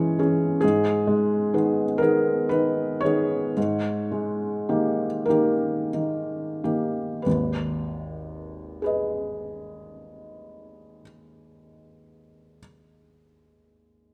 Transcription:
0, 0, Header, 1, 2, 480
1, 0, Start_track
1, 0, Key_signature, 5, "minor"
1, 0, Tempo, 888889
1, 336, Time_signature, 12, 3, 24, 8
1, 827, Tempo, 988468
1, 1307, Tempo, 1041667
1, 1787, Tempo, 1115242
1, 2267, Tempo, 1257862
1, 2747, Tempo, 1318681
1, 3227, Tempo, 1045296
1, 5627, Tempo, 1071429
1, 6370, End_track
2, 0, Start_track
2, 0, Title_t, "Felt piano"
2, 0, Program_c, 0, 0
2, 0, Control_c, 0, 64, 127
2, 0, Note_on_c, 0, 44, 42
2, 0, Note_on_c, 0, 52, 41
2, 0, Note_on_c, 0, 56, 35
2, 0, Note_on_c, 0, 61, 36
2, 0, Note_on_c, 0, 68, 38
2, 0, Note_on_c, 0, 73, 62
2, 94, Note_off_c, 0, 52, 0
2, 102, Note_on_c, 0, 52, 35
2, 104, Note_off_c, 0, 61, 0
2, 104, Note_on_c, 0, 61, 34
2, 105, Note_off_c, 0, 68, 0
2, 105, Note_on_c, 0, 68, 39
2, 314, Note_off_c, 0, 44, 0
2, 314, Note_off_c, 0, 52, 0
2, 315, Note_off_c, 0, 61, 0
2, 315, Note_off_c, 0, 68, 0
2, 327, Note_on_c, 0, 68, 62
2, 328, Note_off_c, 0, 73, 0
2, 344, Note_on_c, 0, 44, 41
2, 348, Note_off_c, 0, 56, 0
2, 348, Control_c, 0, 64, 0
2, 443, Control_c, 0, 64, 127
2, 580, Note_on_c, 0, 56, 40
2, 824, Note_off_c, 0, 68, 0
2, 830, Note_on_c, 0, 51, 36
2, 832, Note_on_c, 0, 59, 33
2, 832, Note_on_c, 0, 68, 36
2, 970, Note_off_c, 0, 56, 0
2, 1045, Note_off_c, 0, 51, 0
2, 1045, Note_on_c, 0, 70, 59
2, 1046, Note_off_c, 0, 59, 0
2, 1046, Note_off_c, 0, 68, 0
2, 1061, Note_on_c, 0, 51, 35
2, 1062, Note_on_c, 0, 59, 34
2, 1067, Note_on_c, 0, 68, 39
2, 1286, Note_off_c, 0, 51, 0
2, 1287, Note_off_c, 0, 59, 0
2, 1289, Note_off_c, 0, 68, 0
2, 1294, Note_on_c, 0, 71, 53
2, 1298, Note_off_c, 0, 70, 0
2, 1307, Note_on_c, 0, 51, 33
2, 1531, Note_on_c, 0, 73, 65
2, 1538, Note_off_c, 0, 71, 0
2, 1540, Note_off_c, 0, 51, 0
2, 1547, Note_on_c, 0, 51, 33
2, 1550, Note_on_c, 0, 59, 33
2, 1552, Note_on_c, 0, 68, 36
2, 1769, Note_off_c, 0, 51, 0
2, 1771, Note_off_c, 0, 59, 0
2, 1772, Note_off_c, 0, 44, 0
2, 1772, Note_off_c, 0, 68, 0
2, 1791, Note_on_c, 0, 44, 39
2, 1797, Control_c, 0, 64, 0
2, 1878, Control_c, 0, 64, 127
2, 2025, Note_on_c, 0, 56, 34
2, 2272, Note_on_c, 0, 51, 29
2, 2272, Note_on_c, 0, 67, 30
2, 2274, Note_on_c, 0, 58, 29
2, 2409, Note_off_c, 0, 56, 0
2, 2488, Note_on_c, 0, 70, 53
2, 2489, Note_off_c, 0, 51, 0
2, 2489, Note_off_c, 0, 67, 0
2, 2490, Note_off_c, 0, 58, 0
2, 2496, Note_off_c, 0, 73, 0
2, 2500, Note_on_c, 0, 58, 29
2, 2502, Note_on_c, 0, 51, 30
2, 2504, Note_on_c, 0, 67, 30
2, 2731, Note_off_c, 0, 58, 0
2, 2732, Note_off_c, 0, 51, 0
2, 2733, Note_off_c, 0, 67, 0
2, 2748, Note_on_c, 0, 51, 29
2, 2998, Note_off_c, 0, 51, 0
2, 3003, Note_on_c, 0, 51, 26
2, 3004, Note_on_c, 0, 67, 27
2, 3005, Note_on_c, 0, 58, 24
2, 3214, Note_off_c, 0, 44, 0
2, 3214, Note_off_c, 0, 51, 0
2, 3214, Note_off_c, 0, 58, 0
2, 3214, Note_off_c, 0, 67, 0
2, 3216, Note_on_c, 0, 71, 28
2, 3221, Note_off_c, 0, 70, 0
2, 3231, Note_on_c, 0, 32, 25
2, 3231, Note_on_c, 0, 39, 27
2, 3238, Control_c, 0, 64, 0
2, 3345, Control_c, 0, 64, 127
2, 3947, Note_on_c, 0, 68, 25
2, 3949, Note_off_c, 0, 71, 0
2, 3956, Note_on_c, 0, 71, 25
2, 3966, Note_on_c, 0, 75, 23
2, 4952, Note_off_c, 0, 39, 0
2, 4953, Note_off_c, 0, 32, 0
2, 5667, Note_off_c, 0, 68, 0
2, 5676, Note_off_c, 0, 71, 0
2, 5686, Note_off_c, 0, 75, 0
2, 6370, End_track
0, 0, End_of_file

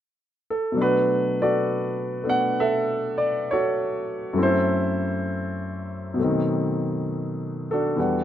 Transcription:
0, 0, Header, 1, 2, 480
1, 0, Start_track
1, 0, Key_signature, 2, "minor"
1, 0, Tempo, 904977
1, 391, Time_signature, 4, 2, 24, 8
1, 4371, End_track
2, 0, Start_track
2, 0, Title_t, "Grand piano"
2, 0, Program_c, 0, 0
2, 268, Note_on_c, 0, 69, 54
2, 381, Note_on_c, 0, 47, 38
2, 392, Note_on_c, 0, 54, 36
2, 396, Note_on_c, 0, 57, 36
2, 410, Note_on_c, 0, 62, 42
2, 413, Note_off_c, 0, 69, 0
2, 421, Note_off_c, 0, 62, 0
2, 429, Note_on_c, 0, 62, 52
2, 432, Note_on_c, 0, 71, 73
2, 433, Note_on_c, 0, 66, 46
2, 498, Control_c, 0, 64, 127
2, 717, Note_off_c, 0, 71, 0
2, 748, Note_off_c, 0, 66, 0
2, 752, Note_on_c, 0, 74, 61
2, 756, Note_on_c, 0, 66, 49
2, 757, Note_on_c, 0, 69, 49
2, 1179, Note_off_c, 0, 57, 0
2, 1187, Note_on_c, 0, 57, 38
2, 1191, Note_off_c, 0, 62, 0
2, 1193, Note_on_c, 0, 59, 35
2, 1197, Note_off_c, 0, 74, 0
2, 1199, Note_on_c, 0, 62, 38
2, 1217, Note_on_c, 0, 78, 78
2, 1370, Note_off_c, 0, 78, 0
2, 1375, Note_off_c, 0, 69, 0
2, 1379, Note_on_c, 0, 76, 70
2, 1383, Note_on_c, 0, 69, 58
2, 1679, Note_off_c, 0, 66, 0
2, 1685, Note_on_c, 0, 74, 65
2, 1702, Note_off_c, 0, 76, 0
2, 1845, Note_off_c, 0, 74, 0
2, 1861, Note_on_c, 0, 73, 67
2, 1863, Note_off_c, 0, 69, 0
2, 1871, Note_on_c, 0, 66, 45
2, 1871, Note_on_c, 0, 69, 46
2, 2295, Note_off_c, 0, 54, 0
2, 2298, Note_on_c, 0, 42, 45
2, 2301, Note_off_c, 0, 57, 0
2, 2303, Note_on_c, 0, 54, 39
2, 2309, Note_on_c, 0, 57, 44
2, 2313, Note_off_c, 0, 47, 0
2, 2313, Note_off_c, 0, 66, 0
2, 2313, Note_off_c, 0, 69, 0
2, 2316, Note_off_c, 0, 59, 0
2, 2319, Note_off_c, 0, 62, 0
2, 2321, Note_on_c, 0, 60, 44
2, 2325, Control_c, 0, 64, 0
2, 2327, Note_on_c, 0, 64, 42
2, 2344, Note_off_c, 0, 73, 0
2, 2349, Note_on_c, 0, 72, 64
2, 2350, Note_off_c, 0, 64, 0
2, 2356, Note_on_c, 0, 69, 46
2, 2358, Note_on_c, 0, 64, 49
2, 2409, Control_c, 0, 64, 127
2, 3256, Note_on_c, 0, 47, 48
2, 3260, Note_off_c, 0, 54, 0
2, 3265, Note_off_c, 0, 42, 0
2, 3268, Note_on_c, 0, 54, 36
2, 3269, Note_off_c, 0, 72, 0
2, 3271, Note_off_c, 0, 57, 0
2, 3273, Note_off_c, 0, 69, 0
2, 3274, Note_off_c, 0, 64, 0
2, 3276, Note_off_c, 0, 60, 0
2, 3283, Control_c, 0, 64, 0
2, 3283, Note_on_c, 0, 57, 42
2, 3298, Note_on_c, 0, 60, 36
2, 3310, Note_on_c, 0, 51, 45
2, 3380, Control_c, 0, 64, 127
2, 4089, Note_on_c, 0, 69, 59
2, 4100, Note_on_c, 0, 66, 40
2, 4103, Note_on_c, 0, 62, 43
2, 4218, Note_off_c, 0, 47, 0
2, 4218, Note_on_c, 0, 40, 37
2, 4223, Note_on_c, 0, 52, 36
2, 4224, Note_off_c, 0, 54, 0
2, 4228, Note_on_c, 0, 55, 36
2, 4232, Note_off_c, 0, 57, 0
2, 4232, Note_off_c, 0, 62, 0
2, 4234, Control_c, 0, 64, 0
2, 4239, Note_off_c, 0, 60, 0
2, 4240, Note_on_c, 0, 62, 35
2, 4243, Note_on_c, 0, 78, 41
2, 4245, Note_off_c, 0, 51, 0
2, 4329, Control_c, 0, 64, 127
2, 4371, Note_off_c, 0, 40, 0
2, 4371, Note_off_c, 0, 52, 0
2, 4371, Note_off_c, 0, 55, 0
2, 4371, Note_off_c, 0, 62, 0
2, 4371, Note_off_c, 0, 66, 0
2, 4371, Note_off_c, 0, 69, 0
2, 4371, Note_off_c, 0, 78, 0
2, 4371, End_track
0, 0, End_of_file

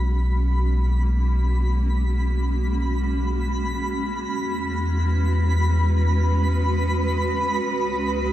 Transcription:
0, 0, Header, 1, 4, 480
1, 0, Start_track
1, 0, Tempo, 500000
1, 7993, End_track
2, 0, Start_track
2, 0, Title_t, "Synth texture"
2, 0, Program_c, 0, 99
2, 0, Note_on_c, 0, 83, 75
2, 7993, Note_off_c, 0, 83, 0
2, 7993, End_track
3, 0, Start_track
3, 0, Title_t, "Ambient pad"
3, 0, Program_c, 1, 92
3, 0, Note_on_c, 1, 56, 74
3, 0, Note_on_c, 1, 58, 73
3, 0, Note_on_c, 1, 61, 69
3, 0, Note_on_c, 1, 66, 69
3, 4130, Note_off_c, 1, 58, 0
3, 4366, Note_on_c, 1, 71, 87
3, 7993, Note_off_c, 1, 56, 0
3, 7993, Note_off_c, 1, 61, 0
3, 7993, Note_off_c, 1, 66, 0
3, 7993, Note_off_c, 1, 71, 0
3, 7993, End_track
4, 0, Start_track
4, 0, Title_t, "Sub bass"
4, 0, Program_c, 2, 38
4, 0, Note_on_c, 2, 35, 95
4, 4099, Note_off_c, 2, 35, 0
4, 4140, Note_on_c, 2, 40, 101
4, 7299, Note_off_c, 2, 40, 0
4, 7327, Note_on_c, 2, 37, 87
4, 7993, Note_off_c, 2, 37, 0
4, 7993, End_track
0, 0, End_of_file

